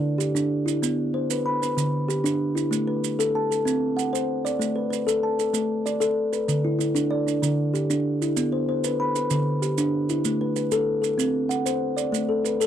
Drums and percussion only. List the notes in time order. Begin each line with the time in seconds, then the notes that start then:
0.20 maracas
0.36 maracas
0.68 maracas
0.83 maracas
1.31 maracas
1.63 maracas
1.78 maracas
2.10 maracas
2.26 maracas
2.57 maracas
2.73 maracas
3.04 maracas
3.20 maracas
3.52 maracas
3.67 maracas
3.99 maracas
4.15 maracas
4.46 maracas
4.61 maracas
4.93 maracas
5.08 maracas
5.39 maracas
5.54 maracas
5.86 maracas
6.01 maracas
6.33 maracas
6.49 maracas
6.81 maracas
6.96 maracas
7.28 maracas
7.43 maracas
7.75 maracas
7.90 maracas
8.22 maracas
8.37 maracas
8.84 maracas
9.16 maracas
9.30 maracas
9.63 maracas
9.78 maracas
10.10 maracas
10.25 maracas
10.56 maracas
10.72 maracas
11.04 maracas
11.19 maracas
11.51 maracas
11.66 maracas
11.98 maracas
12.14 maracas
12.46 maracas
12.61 maracas